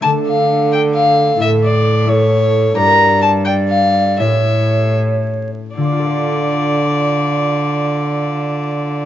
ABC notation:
X:1
M:6/8
L:1/8
Q:3/8=80
K:Dm
V:1 name="Violin"
a f2 g f2 | e d2 ^c3 | b2 a g f2 | e3 z3 |
d6- | d6 |]
V:2 name="Recorder"
A6 | A3 A3 | d3 d3 | ^c4- c z |
F6- | F6 |]
V:3 name="Harp"
[A,DA]6 | [A,EA]3 [A,EA]3 | [DGB]6 | [^CEA]6- |
[^CEA]6- | [^CEA]6 |]
V:4 name="Harp" clef=bass
D,6 | A,,6 | G,,6 | A,,6 |
[D,DFAf]6- | [D,DFAf]6 |]
V:5 name="Cello" clef=bass
D,6 | A,,6 | G,,6 | A,,4- A,, z |
D,6- | D,6 |]